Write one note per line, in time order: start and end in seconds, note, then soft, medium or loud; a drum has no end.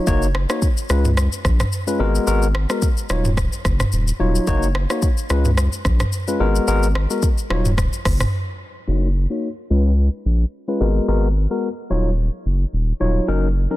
0.07 0.46 F#1 loud
0.07 0.26 A#3 loud
0.07 0.26 D#4 medium
0.07 0.26 F#4 medium
0.07 0.26 C#5 loud
0.07 kick loud
0.07 shaker medium
0.22 shaker medium
0.35 cross-stick loud
0.50 0.67 A#3 medium
0.50 0.67 D#4 medium
0.50 0.67 F#4 medium
0.50 0.67 C#5 medium
0.50 cross-stick loud
0.50 shaker medium
0.62 kick loud
0.62 shaker medium
0.77 shaker medium
0.89 1.29 C#2 loud
0.89 1.09 G#3 medium
0.89 1.09 C#4 medium
0.89 1.09 F4 medium
0.89 1.09 B4 medium
0.89 cross-stick medium
0.89 shaker medium
1.05 mid tom medium
1.05 shaker soft
1.17 cross-stick loud
1.17 shaker medium
1.33 shaker medium
1.45 1.64 A#1 medium
1.45 kick medium
1.45 cross-stick medium
1.45 shaker soft
1.60 cross-stick loud
1.60 mid tom medium
1.60 shaker medium
1.72 shaker medium
1.87 1.98 G#3 medium
1.87 2.04 C#4 medium
1.87 2.04 F4 medium
1.87 2.05 B4 medium
1.87 shaker medium
1.99 2.19 G#1 loud
1.99 2.25 G#3 medium
1.99 2.25 B3 medium
1.99 2.25 F#4 medium
1.99 2.25 A#4 loud
2.15 shaker medium
2.27 2.66 G#1 loud
2.27 2.46 G#3 loud
2.27 2.46 B3 medium
2.27 2.46 F#4 medium
2.27 2.46 A#4 loud
2.27 shaker medium
2.42 shaker soft
2.55 cross-stick loud
2.70 2.87 G#3 medium
2.70 2.87 B3 medium
2.70 2.87 F#4 medium
2.70 2.87 A#4 medium
2.70 cross-stick medium
2.70 shaker medium
2.82 kick loud
2.82 shaker medium
2.97 shaker medium
3.09 3.49 D#1 loud
3.09 3.29 F#3 medium
3.09 3.29 D#4 medium
3.09 3.29 F4 medium
3.09 3.29 C#5 medium
3.09 cross-stick loud
3.09 shaker medium
3.25 mid tom medium
3.25 shaker medium
3.37 kick loud
3.37 cross-stick loud
3.37 shaker medium
3.53 shaker medium
3.65 3.84 F#1 loud
3.65 kick medium
3.65 cross-stick medium
3.65 shaker soft
3.80 cross-stick medium
3.80 mid tom loud
3.80 shaker medium
3.92 4.12 D#1 medium
3.92 shaker medium
4.08 shaker medium
4.20 4.39 D#1 medium
4.20 4.45 F#3 medium
4.20 4.45 D#4 medium
4.20 4.45 F4 medium
4.20 4.46 C#5 medium
4.35 shaker medium
4.47 4.86 F#1 loud
4.47 4.66 A#3 loud
4.47 4.66 D#4 medium
4.47 4.66 F#4 medium
4.47 4.67 C#5 loud
4.47 kick loud
4.47 shaker medium
4.63 shaker soft
4.75 cross-stick loud
4.90 5.07 A#3 medium
4.90 5.07 D#4 medium
4.90 5.07 F#4 medium
4.90 5.07 C#5 medium
4.90 cross-stick medium
4.90 shaker medium
5.02 kick loud
5.02 shaker medium
5.18 shaker medium
5.30 5.69 C#2 loud
5.30 5.49 G#3 medium
5.30 5.49 C#4 medium
5.30 5.49 F4 medium
5.30 5.49 B4 medium
5.30 cross-stick medium
5.30 shaker soft
5.45 mid tom medium
5.45 shaker soft
5.57 cross-stick loud
5.57 shaker medium
5.73 shaker medium
5.85 6.05 A#1 loud
5.85 kick medium
5.85 cross-stick medium
5.85 shaker medium
6.00 cross-stick loud
6.00 mid tom loud
6.00 shaker medium
6.13 shaker medium
6.28 6.39 G#3 medium
6.28 6.45 C#4 medium
6.28 6.45 F4 medium
6.28 6.45 B4 medium
6.28 shaker medium
6.40 6.60 G#1 loud
6.40 6.66 G#3 loud
6.40 6.66 B3 medium
6.40 6.66 F#4 medium
6.40 6.66 A#4 loud
6.56 shaker medium
6.67 7.07 G#1 loud
6.67 6.86 G#3 loud
6.67 6.86 B3 medium
6.67 6.87 F#4 medium
6.67 6.87 A#4 loud
6.67 shaker medium
6.83 shaker soft
6.95 cross-stick loud
7.10 7.27 G#3 medium
7.10 7.27 B3 medium
7.10 7.27 F#4 medium
7.10 7.28 A#4 medium
7.10 shaker medium
7.23 kick loud
7.23 shaker medium
7.38 shaker medium
7.50 7.89 D#1 loud
7.50 7.69 F#3 medium
7.50 7.69 D#4 medium
7.50 7.69 F4 medium
7.50 7.69 C#5 medium
7.50 cross-stick loud
7.65 mid tom medium
7.65 shaker soft
7.78 kick loud
7.78 cross-stick loud
7.78 shaker medium
7.93 shaker medium
8.05 8.25 F#1 medium
8.05 kick medium
8.05 cross-stick loud
8.05 open hi-hat soft
8.05 shaker soft
8.20 cross-stick medium
8.20 mid tom loud
8.20 shaker medium
8.88 9.27 F#1 loud
8.88 9.07 A#3 medium
8.88 9.07 D#4 medium
8.88 9.07 F#4 medium
8.88 9.07 C#5 loud
9.30 9.47 A#3 medium
9.30 9.47 D#4 medium
9.30 9.48 F#4 medium
9.30 9.48 C#5 medium
9.70 10.09 C#2 loud
9.70 9.89 G#3 medium
9.70 9.89 C#4 medium
9.70 9.89 F4 medium
9.70 9.90 B4 medium
10.25 10.45 A#1 medium
10.68 10.79 G#3 medium
10.68 10.85 C#4 medium
10.68 10.85 F4 medium
10.68 10.85 B4 medium
10.80 11.00 G#1 loud
10.80 11.06 G#3 medium
10.80 11.06 B3 medium
10.80 11.06 F#4 medium
10.80 11.06 A#4 loud
11.08 11.47 G#1 loud
11.08 11.27 G#3 medium
11.08 11.27 B3 medium
11.08 11.27 F#4 medium
11.08 11.27 A#4 loud
11.50 11.68 G#3 medium
11.50 11.68 B3 medium
11.50 11.68 F#4 medium
11.50 11.68 A#4 medium
11.90 12.30 D#1 loud
11.90 12.09 F#3 medium
11.90 12.09 D#4 medium
11.90 12.09 F4 medium
11.90 12.10 C#5 medium
12.46 12.65 F#1 medium
12.73 12.93 D#1 medium
13.00 13.20 D#1 medium
13.00 13.26 F#3 medium
13.00 13.26 D#4 medium
13.00 13.26 F4 medium
13.00 13.26 C#5 medium
13.28 13.67 F#1 loud
13.28 13.47 F#3 medium
13.28 13.47 C#4 medium
13.28 13.47 D#4 medium
13.28 13.47 A#4 loud
13.71 13.77 F#3 medium
13.71 13.77 C#4 medium
13.71 13.77 D#4 medium
13.71 13.77 A#4 medium